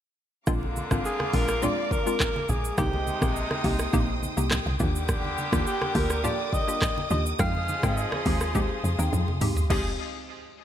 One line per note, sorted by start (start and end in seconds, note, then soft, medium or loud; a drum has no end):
0.47 0.82 A#1 loud
0.47 2.45 D3 medium
0.47 0.87 G#3 medium
0.47 4.76 G#3 medium
0.47 2.45 A#3 medium
0.47 0.87 C4 medium
0.47 0.88 D4 medium
0.47 2.45 F4 loud
0.47 0.88 F4 loud
0.47 2.76 F5 medium
0.47 2.76 A#5 medium
0.47 2.76 D6 medium
0.47 kick loud
0.47 cross-stick medium
0.47 low conga medium
0.47 shaker medium
0.63 high conga medium
0.76 high conga medium
0.76 shaker medium
0.91 1.02 G#1 medium
0.91 1.30 G#3 medium
0.91 1.30 C4 medium
0.91 1.30 D4 medium
0.91 1.31 F4 medium
0.91 kick loud
0.91 cross-stick loud
0.91 high conga medium
0.91 shaker medium
1.05 1.36 G#4 loud
1.05 shaker medium
1.20 cross-stick medium
1.20 high conga medium
1.33 1.68 A#1 medium
1.33 1.60 G#3 medium
1.33 1.60 C4 medium
1.33 1.60 D4 medium
1.33 1.61 F4 medium
1.33 1.64 A#4 loud
1.33 kick medium
1.33 open hi-hat medium
1.33 shaker soft
1.48 cross-stick medium
1.48 shaker medium
1.62 1.81 G#3 medium
1.62 1.81 C4 medium
1.62 1.81 D4 medium
1.62 1.81 F4 loud
1.62 1.93 D5 loud
1.62 low conga medium
1.62 shaker medium
1.91 2.51 A#4 loud
1.91 kick medium
1.91 high conga medium
1.91 shaker medium
2.06 2.24 G#3 medium
2.06 2.24 C4 medium
2.06 2.24 D4 medium
2.06 2.24 F4 medium
2.06 shaker medium
2.20 kick loud
2.20 cross-stick loud
2.20 clap loud
2.20 low conga medium
2.20 shaker medium
2.36 high conga medium
2.49 2.72 A#1 medium
2.49 2.78 G#4 medium
2.49 high conga medium
2.49 low conga medium
2.49 shaker medium
2.65 shaker medium
2.78 3.12 C2 loud
2.78 4.48 C3 medium
2.78 4.48 G#3 medium
2.78 3.18 A#3 medium
2.78 3.18 C4 medium
2.78 4.48 D#4 medium
2.78 3.18 D#4 medium
2.78 3.18 G4 loud
2.78 3.61 G4 medium
2.78 7.35 G5 medium
2.78 4.78 C6 medium
2.78 4.78 D#6 medium
2.78 kick loud
2.78 cross-stick loud
2.78 low conga medium
2.78 shaker medium
2.93 high conga medium
3.07 high conga medium
3.07 shaker medium
3.22 3.44 A#1 medium
3.22 3.61 A#3 medium
3.22 3.61 C4 medium
3.22 3.61 D#4 medium
3.22 3.61 G4 medium
3.22 kick loud
3.22 cross-stick loud
3.22 high conga medium
3.22 shaker medium
3.36 shaker medium
3.51 cross-stick medium
3.51 high conga medium
3.64 3.87 C2 loud
3.64 3.91 A#3 medium
3.64 3.91 C4 medium
3.64 3.91 D#4 medium
3.64 3.91 G4 medium
3.64 kick medium
3.64 open hi-hat medium
3.64 shaker soft
3.79 cross-stick medium
3.79 shaker medium
3.93 4.28 A#1 loud
3.93 4.12 A#3 loud
3.93 4.12 C4 medium
3.93 4.12 D#4 medium
3.93 4.12 G4 loud
3.93 kick loud
3.93 low conga medium
3.93 shaker medium
4.23 high conga medium
4.23 shaker medium
4.37 4.60 C2 loud
4.37 4.55 A#3 medium
4.37 4.55 C4 medium
4.37 4.55 D#4 medium
4.37 4.55 G4 medium
4.37 shaker medium
4.51 cross-stick loud
4.51 clap loud
4.51 low conga medium
4.51 shaker medium
4.66 4.77 C2 medium
4.66 high conga medium
4.80 5.37 D#2 medium
4.80 7.07 D3 medium
4.80 7.07 G3 medium
4.80 4.98 A#3 medium
4.80 4.98 D4 medium
4.80 4.98 F4 medium
4.80 7.07 G4 loud
4.80 4.98 G4 medium
4.80 7.37 A#4 medium
4.80 7.37 D6 medium
4.80 9.66 D#6 medium
4.80 kick medium
4.80 high conga medium
4.80 low conga medium
4.80 shaker medium
4.96 shaker medium
5.09 kick loud
5.09 cross-stick loud
5.09 low conga medium
5.09 shaker medium
5.24 high conga medium
5.38 high conga medium
5.38 shaker medium
5.52 5.64 D#2 medium
5.52 5.92 A#3 medium
5.52 5.92 D4 medium
5.52 5.92 F4 medium
5.52 5.92 G4 medium
5.52 kick loud
5.52 cross-stick loud
5.52 high conga medium
5.52 shaker medium
5.67 5.97 G4 medium
5.67 shaker medium
5.82 cross-stick medium
5.82 high conga medium
5.95 6.30 D2 loud
5.95 6.22 A#3 medium
5.95 6.22 D4 medium
5.95 6.22 F4 medium
5.95 6.22 G4 medium
5.95 6.24 A#4 medium
5.95 kick medium
5.95 open hi-hat medium
5.95 shaker soft
6.10 cross-stick medium
6.10 shaker medium
6.24 6.42 A#3 medium
6.24 6.42 D4 medium
6.24 6.42 F4 medium
6.24 6.43 G4 loud
6.24 6.55 D5 loud
6.24 low conga medium
6.24 shaker medium
6.53 7.11 D#5 loud
6.53 kick medium
6.53 high conga medium
6.53 shaker medium
6.68 6.85 A#3 medium
6.68 6.85 D4 medium
6.68 6.85 F4 medium
6.68 6.86 G4 medium
6.68 shaker medium
6.82 kick loud
6.82 cross-stick loud
6.82 clap loud
6.82 low conga medium
6.82 shaker medium
6.98 high conga medium
7.10 7.33 D#2 medium
7.10 7.29 A#3 medium
7.10 7.29 D4 medium
7.10 7.29 F4 medium
7.10 7.29 G4 medium
7.10 7.24 D#5 loud
7.10 high conga medium
7.10 low conga medium
7.10 shaker medium
7.26 shaker medium
7.39 7.74 F2 loud
7.39 9.37 F3 medium
7.39 7.80 G#3 loud
7.39 7.80 C4 medium
7.39 9.37 D#4 medium
7.39 7.80 D#4 medium
7.39 9.37 G#4 loud
7.39 9.68 G#4 medium
7.39 9.68 F5 medium
7.39 8.22 F5 loud
7.39 7.80 G5 loud
7.39 9.68 C6 medium
7.39 kick loud
7.39 cross-stick loud
7.39 low conga medium
7.39 shaker medium
7.55 high conga medium
7.68 high conga medium
7.68 shaker medium
7.83 8.06 G#2 medium
7.83 8.23 G#3 medium
7.83 8.23 C4 medium
7.83 8.23 D#4 medium
7.83 8.23 G5 medium
7.83 kick loud
7.83 cross-stick loud
7.83 high conga medium
7.83 shaker medium
7.97 shaker medium
8.12 cross-stick loud
8.12 high conga medium
8.26 8.71 D#2 medium
8.26 8.53 G#3 medium
8.26 8.53 C4 medium
8.26 8.53 D#4 medium
8.26 8.53 G4 medium
8.26 kick medium
8.26 open hi-hat medium
8.26 shaker soft
8.41 cross-stick medium
8.41 shaker medium
8.55 8.73 G#3 loud
8.55 8.73 C4 medium
8.55 8.73 D#4 medium
8.55 8.73 G4 loud
8.55 kick loud
8.55 low conga medium
8.55 shaker medium
8.84 8.96 F2 medium
8.84 high conga medium
8.84 shaker medium
8.98 9.10 D#2 medium
8.98 9.38 G#3 medium
8.98 9.38 C4 medium
8.98 9.38 D#4 medium
8.98 9.38 G5 medium
8.98 shaker medium
9.13 9.43 F2 loud
9.13 high tom medium
9.13 low conga medium
9.13 shaker medium
9.28 mid tom medium
9.28 high conga medium
9.41 9.64 D#2 medium
9.41 9.68 G#3 medium
9.41 9.68 C4 medium
9.41 9.68 D#4 medium
9.41 9.68 G4 medium
9.41 mid tom medium
9.41 open hi-hat medium
9.41 high conga medium
9.41 low conga medium
9.41 shaker medium
9.57 floor tom medium
9.57 shaker medium
9.70 9.97 F1 loud
9.70 9.90 F3 medium
9.70 9.92 G#3 medium
9.70 9.92 C4 medium
9.70 9.97 C4 medium
9.70 9.90 D#4 medium
9.70 9.92 D#4 medium
9.70 9.92 G4 loud
9.70 9.90 G#4 loud
9.70 9.97 G#4 medium
9.70 9.97 D#5 medium
9.70 9.97 F5 medium
9.70 kick loud
9.70 crash medium
9.70 high conga medium